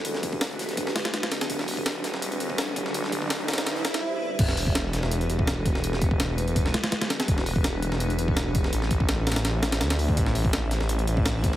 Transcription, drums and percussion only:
0.05 closed hi-hat
0.14 snare
0.23 kick, closed hi-hat
0.33 kick
0.41 snare, closed hi-hat
0.51 closed hi-hat
0.59 snare, closed hi-hat
0.69 snare, closed hi-hat
0.77 kick, closed hi-hat
0.87 snare
0.96 snare, closed hi-hat
1.05 snare, closed hi-hat
1.14 snare, closed hi-hat
1.23 snare, closed hi-hat
1.31 snare, closed hi-hat
1.41 snare, closed hi-hat
1.50 kick, closed hi-hat
1.59 snare, closed hi-hat
1.68 closed hi-hat, open hi-hat
1.77 kick, closed hi-hat
1.86 snare, closed hi-hat
2.04 snare, closed hi-hat
2.14 snare
2.22 closed hi-hat
2.32 closed hi-hat
2.40 closed hi-hat
2.50 kick
2.58 snare, closed hi-hat
2.76 kick, closed hi-hat
2.86 snare
2.94 closed hi-hat
3.04 snare
3.12 kick, closed hi-hat
3.22 kick
3.30 snare, closed hi-hat
3.41 closed hi-hat
3.48 snare, closed hi-hat
3.53 snare, closed hi-hat
3.58 snare, closed hi-hat
3.66 snare, closed hi-hat
3.75 snare
3.85 snare, closed hi-hat
3.94 snare, closed hi-hat
4.39 kick, closed hi-hat, crash
4.49 snare
4.57 open hi-hat
4.67 kick
4.75 snare, closed hi-hat
4.93 snare, closed hi-hat
5.03 snare
5.11 closed hi-hat
5.21 closed hi-hat
5.30 closed hi-hat
5.39 kick
5.47 snare, closed hi-hat
5.66 kick, closed hi-hat
5.75 snare
5.84 closed hi-hat
5.93 snare
6.02 kick, closed hi-hat
6.11 kick
6.20 snare, closed hi-hat
6.38 closed hi-hat
6.48 closed hi-hat
6.56 kick, closed hi-hat
6.66 snare
6.74 snare, closed hi-hat
6.84 snare, closed hi-hat
6.92 snare, closed hi-hat
7.01 snare, closed hi-hat
7.10 snare, closed hi-hat
7.20 snare, closed hi-hat
7.28 kick, closed hi-hat
7.38 snare
7.46 open hi-hat
7.56 kick
7.64 snare, closed hi-hat
7.82 closed hi-hat
7.92 snare
8.00 closed hi-hat
8.10 closed hi-hat
8.19 closed hi-hat
8.28 kick
8.37 snare, closed hi-hat
8.55 kick, closed hi-hat
8.64 snare
8.73 closed hi-hat
8.82 snare
8.91 kick, closed hi-hat
9.00 kick
9.09 snare, closed hi-hat
9.27 snare, closed hi-hat
9.32 snare, closed hi-hat
9.36 snare, closed hi-hat
9.45 snare, closed hi-hat
9.63 snare, closed hi-hat
9.72 snare, closed hi-hat
9.81 snare, closed hi-hat
9.90 snare, closed hi-hat
9.99 open hi-hat
10.09 kick
10.17 kick, closed hi-hat
10.26 snare
10.35 open hi-hat
10.45 kick
10.53 snare, closed hi-hat
10.71 snare, closed hi-hat
10.81 snare
10.89 closed hi-hat
10.99 closed hi-hat
11.07 closed hi-hat
11.17 kick
11.26 snare, closed hi-hat
11.44 kick, closed hi-hat
11.53 snare

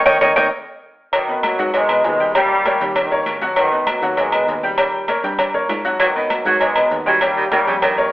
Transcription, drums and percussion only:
0.06 cowbell, high conga, high timbale
0.21 cowbell, high conga, high timbale
0.36 cowbell, high conga, high timbale
1.13 cowbell, high conga, low agogo
1.29 high conga
1.43 cowbell, high conga, low agogo
1.59 cowbell
1.74 cowbell, high conga, low agogo
1.89 high conga, low agogo
2.04 cowbell, low timbale
2.20 high conga
2.35 cowbell, high conga, low agogo
2.50 high conga
2.66 cowbell, high conga, low agogo
2.81 cowbell
2.96 cowbell, high conga, low conga, low agogo
3.11 high conga
3.26 cowbell, high conga, low agogo
3.42 cowbell, high conga
3.56 cowbell, high conga, low agogo
3.72 high conga
3.87 cowbell, high conga, low agogo
4.03 cowbell
4.17 cowbell, high conga, low agogo
4.32 high conga, low agogo
4.47 cowbell, high conga
4.63 high conga
4.78 cowbell, high conga, low agogo
4.93 high conga
5.08 cowbell, high conga, low agogo
5.23 cowbell, high conga
5.39 cowbell, high conga, low conga, low agogo
5.54 high conga, low conga
5.69 cowbell, high conga, low timbale, low agogo
5.85 cowbell
6.00 cowbell, high conga, low agogo
6.15 high conga
6.30 cowbell, high conga, low agogo
6.46 cowbell
6.60 cowbell, high conga, low agogo
6.75 high conga, low agogo
6.91 cowbell, high conga
7.06 high conga
7.21 cowbell, high conga, low agogo
7.36 high conga
7.52 cowbell, high conga, low agogo
7.67 cowbell, high conga
7.82 cowbell, high conga, low conga, low agogo
7.97 high conga

